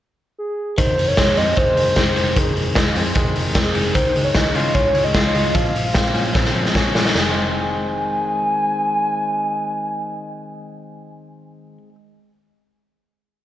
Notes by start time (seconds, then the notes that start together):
0.38 G#4
0.77 F1 D#3 C5, kick, closed hi-hat
0.98 F1 D#3, open hi-hat
1.08 C#5
1.17 F1 G#3, kick, snare, closed hi-hat
1.37 F2 C4 D#5, open hi-hat
1.57 F1 G#3 C5, kick, closed hi-hat
1.77 F1 D#3, open hi-hat
1.96 F1 C4, kick, snare, closed hi-hat
2.16 F1 D#3 C5, open hi-hat
2.36 F1 D#3 G#4, kick, closed hi-hat
2.56 F1 D#3, open hi-hat
2.75 F1 G#3, kick, snare, closed hi-hat
2.96 F2 C4, open hi-hat
3.15 F1 G#3, kick, closed hi-hat
3.36 F1 D#3, open hi-hat
3.55 F1 C4 G#4, kick, snare, closed hi-hat
3.75 F1 D#3, open hi-hat
3.94 C#2 D#3 C5, kick, closed hi-hat
4.15 C#2 G#3, open hi-hat
4.24 C#5
4.35 C#2 C#4 D#5, kick, snare, closed hi-hat
4.55 C#3 F4, open hi-hat
4.74 C#2 C#4 C#5, kick, closed hi-hat
4.95 C#2 G#3, open hi-hat
5.04 D#5
5.14 C#2 F4 D#5, kick, snare, closed hi-hat
5.35 C#2 G#3, open hi-hat
5.54 A#1 F3 F5, kick, closed hi-hat
5.75 A#1 F3, open hi-hat
5.94 A#1 C4, kick, snare, closed hi-hat
6.14 A#2 C#4, open hi-hat
6.34 A#1 C4, kick, snare
6.45 snare
6.55 A#1 F3
6.65 snare
6.75 A#1 C#4, kick, snare
6.95 A#1 F3, snare
7.05 D#3, snare
7.15 F1 G#5, snare, splash
7.21 G#3
7.30 C4